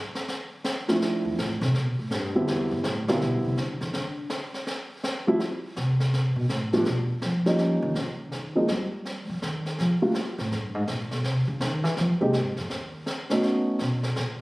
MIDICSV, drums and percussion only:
0, 0, Header, 1, 2, 480
1, 0, Start_track
1, 0, Tempo, 365408
1, 1327, Time_signature, 4, 2, 24, 8
1, 18929, End_track
2, 0, Start_track
2, 0, Title_t, "Drums"
2, 197, Note_on_c, 9, 38, 39
2, 329, Note_off_c, 9, 38, 0
2, 370, Note_on_c, 9, 25, 45
2, 370, Note_on_c, 9, 38, 39
2, 501, Note_off_c, 9, 38, 0
2, 846, Note_on_c, 9, 38, 55
2, 977, Note_off_c, 9, 38, 0
2, 1158, Note_on_c, 9, 38, 36
2, 1290, Note_off_c, 9, 38, 0
2, 1331, Note_off_c, 9, 25, 0
2, 1331, Note_on_c, 9, 25, 41
2, 1331, Note_on_c, 9, 38, 39
2, 1462, Note_off_c, 9, 38, 0
2, 1819, Note_on_c, 9, 38, 59
2, 1950, Note_off_c, 9, 38, 0
2, 2123, Note_on_c, 9, 38, 35
2, 2255, Note_off_c, 9, 38, 0
2, 2289, Note_off_c, 9, 25, 0
2, 2289, Note_on_c, 9, 25, 47
2, 2289, Note_on_c, 9, 38, 40
2, 2420, Note_off_c, 9, 38, 0
2, 2769, Note_on_c, 9, 38, 46
2, 2900, Note_off_c, 9, 38, 0
2, 3249, Note_off_c, 9, 25, 0
2, 3249, Note_on_c, 9, 25, 48
2, 3249, Note_on_c, 9, 38, 42
2, 3380, Note_off_c, 9, 38, 0
2, 3726, Note_on_c, 9, 38, 63
2, 3857, Note_off_c, 9, 38, 0
2, 4046, Note_on_c, 9, 38, 41
2, 4178, Note_off_c, 9, 38, 0
2, 4216, Note_off_c, 9, 25, 0
2, 4216, Note_on_c, 9, 25, 41
2, 4216, Note_on_c, 9, 38, 38
2, 4347, Note_off_c, 9, 38, 0
2, 4695, Note_on_c, 9, 38, 47
2, 4826, Note_off_c, 9, 38, 0
2, 5005, Note_on_c, 9, 38, 35
2, 5136, Note_off_c, 9, 38, 0
2, 5168, Note_off_c, 9, 25, 0
2, 5168, Note_on_c, 9, 25, 45
2, 5168, Note_on_c, 9, 38, 48
2, 5299, Note_off_c, 9, 38, 0
2, 5646, Note_on_c, 9, 38, 68
2, 5777, Note_off_c, 9, 38, 0
2, 5963, Note_on_c, 9, 38, 39
2, 6094, Note_off_c, 9, 38, 0
2, 6130, Note_off_c, 9, 25, 0
2, 6130, Note_on_c, 9, 25, 39
2, 6130, Note_on_c, 9, 38, 44
2, 6262, Note_off_c, 9, 38, 0
2, 6615, Note_on_c, 9, 38, 52
2, 6746, Note_off_c, 9, 38, 0
2, 7090, Note_off_c, 9, 25, 0
2, 7090, Note_on_c, 9, 25, 42
2, 7090, Note_on_c, 9, 38, 43
2, 7222, Note_off_c, 9, 38, 0
2, 7571, Note_on_c, 9, 38, 60
2, 7702, Note_off_c, 9, 38, 0
2, 7882, Note_on_c, 9, 38, 42
2, 8014, Note_off_c, 9, 38, 0
2, 8058, Note_off_c, 9, 25, 0
2, 8058, Note_on_c, 9, 25, 44
2, 8058, Note_on_c, 9, 38, 43
2, 8189, Note_off_c, 9, 38, 0
2, 8528, Note_on_c, 9, 38, 55
2, 8660, Note_off_c, 9, 38, 0
2, 8835, Note_on_c, 9, 38, 40
2, 8967, Note_off_c, 9, 38, 0
2, 8995, Note_off_c, 9, 25, 0
2, 8995, Note_on_c, 9, 25, 46
2, 8995, Note_on_c, 9, 38, 42
2, 9126, Note_off_c, 9, 38, 0
2, 9480, Note_on_c, 9, 38, 62
2, 9611, Note_off_c, 9, 38, 0
2, 9798, Note_on_c, 9, 38, 46
2, 9929, Note_off_c, 9, 38, 0
2, 9959, Note_off_c, 9, 25, 0
2, 9959, Note_on_c, 9, 25, 47
2, 9959, Note_on_c, 9, 38, 45
2, 10090, Note_off_c, 9, 38, 0
2, 10445, Note_on_c, 9, 38, 56
2, 10576, Note_off_c, 9, 38, 0
2, 10925, Note_off_c, 9, 25, 0
2, 10925, Note_on_c, 9, 25, 42
2, 10925, Note_on_c, 9, 38, 35
2, 11056, Note_off_c, 9, 38, 0
2, 11402, Note_on_c, 9, 38, 66
2, 11534, Note_off_c, 9, 38, 0
2, 11892, Note_off_c, 9, 25, 0
2, 11892, Note_on_c, 9, 25, 44
2, 11892, Note_on_c, 9, 38, 38
2, 12024, Note_off_c, 9, 38, 0
2, 12375, Note_on_c, 9, 38, 53
2, 12506, Note_off_c, 9, 38, 0
2, 12686, Note_on_c, 9, 38, 35
2, 12817, Note_off_c, 9, 38, 0
2, 12854, Note_off_c, 9, 25, 0
2, 12854, Note_on_c, 9, 25, 45
2, 12854, Note_on_c, 9, 38, 37
2, 12985, Note_off_c, 9, 38, 0
2, 13326, Note_on_c, 9, 38, 61
2, 13458, Note_off_c, 9, 38, 0
2, 13643, Note_on_c, 9, 38, 39
2, 13775, Note_off_c, 9, 38, 0
2, 13812, Note_off_c, 9, 25, 0
2, 13812, Note_on_c, 9, 25, 48
2, 13812, Note_on_c, 9, 38, 37
2, 13943, Note_off_c, 9, 38, 0
2, 14286, Note_on_c, 9, 38, 51
2, 14418, Note_off_c, 9, 38, 0
2, 14596, Note_on_c, 9, 38, 39
2, 14727, Note_off_c, 9, 38, 0
2, 14763, Note_off_c, 9, 25, 0
2, 14763, Note_on_c, 9, 25, 49
2, 14763, Note_on_c, 9, 38, 42
2, 14895, Note_off_c, 9, 38, 0
2, 15245, Note_on_c, 9, 38, 62
2, 15376, Note_off_c, 9, 38, 0
2, 15558, Note_on_c, 9, 38, 39
2, 15689, Note_off_c, 9, 38, 0
2, 15716, Note_off_c, 9, 25, 0
2, 15716, Note_on_c, 9, 25, 37
2, 15716, Note_on_c, 9, 38, 41
2, 15848, Note_off_c, 9, 38, 0
2, 16198, Note_on_c, 9, 38, 47
2, 16329, Note_off_c, 9, 38, 0
2, 16507, Note_on_c, 9, 38, 37
2, 16638, Note_off_c, 9, 38, 0
2, 16680, Note_off_c, 9, 25, 0
2, 16680, Note_on_c, 9, 25, 45
2, 16680, Note_on_c, 9, 38, 38
2, 16811, Note_off_c, 9, 38, 0
2, 17160, Note_on_c, 9, 38, 64
2, 17291, Note_off_c, 9, 38, 0
2, 17467, Note_on_c, 9, 38, 44
2, 17599, Note_off_c, 9, 38, 0
2, 17639, Note_off_c, 9, 25, 0
2, 17639, Note_on_c, 9, 25, 42
2, 17639, Note_on_c, 9, 38, 41
2, 17770, Note_off_c, 9, 38, 0
2, 18114, Note_on_c, 9, 38, 46
2, 18245, Note_off_c, 9, 38, 0
2, 18430, Note_on_c, 9, 38, 35
2, 18562, Note_off_c, 9, 38, 0
2, 18599, Note_off_c, 9, 25, 0
2, 18599, Note_on_c, 9, 25, 47
2, 18599, Note_on_c, 9, 38, 42
2, 18730, Note_off_c, 9, 38, 0
2, 18929, Note_off_c, 9, 25, 0
2, 18929, End_track
0, 0, End_of_file